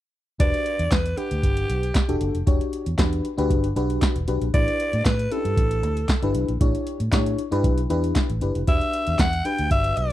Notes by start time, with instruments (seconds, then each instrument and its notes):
0.39 fingered electric bass E1, fm electric piano D4 F#4 G4 B4, alto saxophone D5, kick, closed hi-hat
0.54 closed hi-hat
0.66 closed hi-hat
0.79 fingered electric bass E2, closed hi-hat
0.91 fingered electric bass E2, alto saxophone B4, kick, snare, clap, closed hi-hat
1.06 closed hi-hat
1.17 fm electric piano D4 G4 B4 F#5, alto saxophone G4, closed hi-hat
1.31 fingered electric bass D2, closed hi-hat
1.43 fingered electric bass G1, kick, closed hi-hat
1.57 closed hi-hat
1.70 fingered electric bass B1, closed hi-hat
1.83 closed hi-hat
1.95 kick, snare, clap, closed hi-hat
2.08 fingered electric bass E1, fm electric piano D4 F#4 G4 A4, closed hi-hat
2.21 fingered electric bass F#1, closed hi-hat
2.35 fingered electric bass F1, closed hi-hat
2.47 fingered electric bass E1, fm electric piano D4 F#4 G4 C#5, kick, closed hi-hat
2.61 closed hi-hat
2.73 closed hi-hat
2.86 fingered electric bass E2, closed hi-hat
2.98 fingered electric bass E2, fm electric piano D4 F#4 G4 B4, kick, snare, clap, closed hi-hat
3.13 closed hi-hat
3.25 closed hi-hat
3.38 fingered electric bass D2, fm electric piano D4 F#4 G4 B4, closed hi-hat
3.50 fingered electric bass G1, kick, closed hi-hat
3.64 closed hi-hat
3.76 fingered electric bass B1, fm electric piano D4 F#4 G4 B4, closed hi-hat
3.90 closed hi-hat
4.02 kick, snare, clap, closed hi-hat
4.16 fingered electric bass E1, closed hi-hat
4.28 fingered electric bass B1, fm electric piano D4 F#4 G4 B4, closed hi-hat
4.42 fingered electric bass A#1, closed hi-hat
4.54 fingered electric bass A1, fm electric piano D4 E4 G4 B4, alto saxophone D5, kick, closed hi-hat
4.68 closed hi-hat
4.80 closed hi-hat
4.93 fingered electric bass A2, closed hi-hat
5.05 fingered electric bass A2, alto saxophone B4, kick, snare, clap, closed hi-hat
5.19 closed hi-hat
5.31 fm electric piano C#4 E4 G4 B4, alto saxophone A4, closed hi-hat
5.37 fm electric piano D4
5.45 fingered electric bass G2, closed hi-hat
5.57 fingered electric bass A1, kick, closed hi-hat
5.71 closed hi-hat
5.83 fingered electric bass D2, closed hi-hat
5.97 closed hi-hat
6.08 kick, snare, clap, closed hi-hat
6.22 fingered electric bass G1, fm electric piano D4 E4 G4 B4, closed hi-hat
6.35 fingered electric bass B1, closed hi-hat
6.48 fingered electric bass A#1, closed hi-hat
6.61 fingered electric bass A1, fm electric piano D4 E4 G4 C#5, kick, closed hi-hat
6.75 closed hi-hat
6.87 closed hi-hat
7.00 fingered electric bass A2, closed hi-hat
7.12 fingered electric bass A2, fm electric piano D4 E4 G4 C#5, kick, snare, clap, closed hi-hat
7.26 closed hi-hat
7.38 closed hi-hat
7.51 fingered electric bass G2, fm electric piano D4 E4 G4 B4, closed hi-hat
7.64 fingered electric bass B1, kick, closed hi-hat
7.78 closed hi-hat
7.90 fingered electric bass E2, fm electric piano D4 E4 G4 B4, closed hi-hat
8.04 closed hi-hat
8.15 kick, snare, clap, closed hi-hat
8.30 fingered electric bass A1, closed hi-hat
8.41 fingered electric bass F#1, fm electric piano D4 E4 G4 B4, closed hi-hat
8.55 fingered electric bass F1, closed hi-hat
8.67 fingered electric bass E1, fm electric piano D4 F#4 G4 B4, alto saxophone E5, kick, closed hi-hat
8.81 closed hi-hat
8.93 closed hi-hat
9.07 fingered electric bass E2, closed hi-hat
9.19 fingered electric bass E2, alto saxophone F#5, kick, snare, clap, closed hi-hat
9.33 closed hi-hat
9.45 fm electric piano D4 F#4 G4 B4, alto saxophone G5, closed hi-hat
9.58 fingered electric bass D2, closed hi-hat
9.71 fingered electric bass G1, alto saxophone E5, kick, closed hi-hat
9.84 closed hi-hat
9.97 fingered electric bass B1, alto saxophone C#5, closed hi-hat